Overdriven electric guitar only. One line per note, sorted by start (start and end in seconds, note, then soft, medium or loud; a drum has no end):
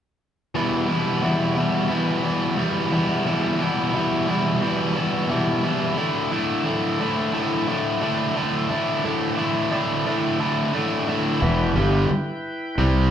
0.55 0.88 E2 medium
0.55 0.87 B2 medium
0.55 0.88 E3 medium
0.55 0.89 G3 medium
0.55 0.89 B3 medium
0.55 0.90 E4 medium
0.88 1.22 E2 medium
0.88 1.21 B2 medium
0.88 1.22 E3 medium
0.88 1.23 G3 medium
0.88 1.24 B3 medium
0.88 1.24 E4 medium
1.22 1.56 E2 medium
1.22 1.56 B2 medium
1.22 1.57 E3 medium
1.22 1.57 G3 medium
1.22 1.58 B3 medium
1.22 1.58 E4 medium
1.57 1.88 E2 medium
1.57 1.89 B2 medium
1.57 1.90 E3 medium
1.57 1.90 G3 medium
1.57 1.90 B3 medium
1.57 1.92 E4 medium
1.89 2.22 E2 medium
1.89 2.22 B2 medium
1.89 2.23 E3 medium
1.89 2.23 G3 medium
1.89 2.24 B3 medium
1.89 2.25 E4 medium
2.23 2.56 E2 medium
2.23 2.57 B2 medium
2.23 2.57 E3 medium
2.23 2.57 G3 medium
2.23 2.57 B3 medium
2.23 2.58 E4 medium
2.57 2.90 E2 medium
2.57 2.91 B2 medium
2.57 2.92 E3 medium
2.57 2.91 G3 medium
2.57 2.92 B3 medium
2.57 2.93 E4 medium
2.92 3.24 E2 medium
2.92 3.25 B2 medium
2.92 3.26 E3 medium
2.92 3.26 G3 medium
2.92 3.25 B3 medium
2.92 3.27 E4 medium
3.26 3.59 E2 medium
3.26 3.59 B2 medium
3.26 3.60 E3 medium
3.26 3.59 G3 medium
3.26 3.60 B3 medium
3.26 3.61 E4 medium
3.60 3.93 E2 medium
3.60 3.93 B2 medium
3.60 3.94 E3 medium
3.60 3.93 G3 medium
3.60 3.94 B3 medium
3.60 3.96 E4 medium
3.94 4.26 E2 medium
3.94 4.26 B2 medium
3.94 4.27 E3 medium
3.94 4.27 G3 medium
3.94 4.27 B3 medium
3.94 4.28 E4 medium
4.27 4.60 E2 medium
4.27 4.60 B2 medium
4.27 4.61 E3 medium
4.27 4.61 G3 medium
4.27 4.61 B3 medium
4.27 4.62 E4 medium
4.61 4.95 E2 medium
4.61 4.95 B2 medium
4.61 4.96 E3 medium
4.61 4.96 G3 medium
4.61 4.96 B3 medium
4.61 4.97 E4 loud
4.96 5.28 E2 medium
4.96 5.28 B2 medium
4.96 5.29 E3 medium
4.96 5.29 G3 medium
4.96 5.29 B3 medium
4.96 5.30 E4 medium
5.29 5.62 E2 medium
5.29 5.63 B2 medium
5.29 5.64 E3 medium
5.29 5.63 G3 medium
5.29 5.63 B3 medium
5.29 5.64 E4 medium
5.63 5.96 E2 medium
5.63 5.95 B2 medium
5.63 5.97 E3 medium
5.63 5.96 G3 medium
5.63 5.96 B3 medium
5.63 5.97 E4 medium
5.96 6.31 A2 medium
5.96 6.31 D3 medium
5.96 6.32 A3 medium
5.96 6.32 D4 medium
5.96 6.33 E4 medium
6.32 6.64 A2 medium
6.32 6.64 D3 medium
6.32 6.65 A3 medium
6.32 6.65 D4 medium
6.32 6.66 E4 medium
6.65 6.99 A2 medium
6.65 6.99 D3 medium
6.65 7.00 A3 medium
6.65 7.00 D4 medium
6.65 7.00 E4 medium
7.00 7.32 A2 medium
7.00 7.32 D3 medium
7.00 7.33 A3 medium
7.00 7.33 D4 medium
7.00 7.34 E4 medium
7.33 7.66 A2 medium
7.33 7.67 D3 medium
7.33 7.67 A3 medium
7.33 7.67 D4 medium
7.33 7.69 E4 loud
7.67 8.00 A2 medium
7.67 8.01 D3 medium
7.67 8.02 A3 medium
7.67 8.02 D4 medium
7.67 8.03 E4 medium
8.01 8.35 A2 medium
8.01 8.35 D3 medium
8.01 8.35 A3 medium
8.01 8.36 D4 medium
8.01 8.37 E4 medium
8.36 8.68 A2 medium
8.36 8.69 D3 medium
8.36 8.69 A3 medium
8.36 8.70 D4 medium
8.36 8.70 E4 medium
8.70 9.03 A2 medium
8.70 9.04 D3 medium
8.70 9.03 A3 medium
8.70 9.04 D4 loud
8.70 9.04 E4 medium
9.04 9.36 A2 medium
9.04 9.36 D3 medium
9.04 9.37 A3 medium
9.04 9.37 D4 medium
9.04 9.38 E4 medium
9.37 9.70 A2 medium
9.37 9.71 D3 medium
9.37 9.71 A3 medium
9.37 9.71 D4 medium
9.37 9.72 E4 medium
9.71 10.05 A2 medium
9.71 10.05 D3 medium
9.71 10.05 A3 medium
9.71 10.05 D4 medium
9.71 10.06 E4 medium
10.06 10.38 A2 medium
10.06 10.39 D3 medium
10.06 10.39 A3 medium
10.06 10.39 D4 medium
10.06 10.40 E4 medium
10.40 10.72 A2 medium
10.40 10.73 D3 medium
10.40 10.73 A3 medium
10.40 10.73 D4 medium
10.40 10.74 E4 medium
10.74 11.06 A2 medium
10.74 11.07 D3 medium
10.74 11.07 A3 medium
10.74 11.08 D4 medium
10.74 11.08 E4 medium
11.08 11.40 A2 medium
11.08 11.40 D3 medium
11.08 11.41 A3 medium
11.08 11.41 D4 medium
11.08 11.41 E4 medium
11.41 11.75 E2 medium
11.41 11.75 B2 medium
11.41 11.76 E3 medium
11.75 12.09 G2 medium
11.75 12.09 D3 medium
11.75 12.10 G3 medium
12.09 muted overdriven electric guitar stroke soft
12.78 13.11 C3 medium
12.78 13.11 G3 medium
12.78 13.11 C4 medium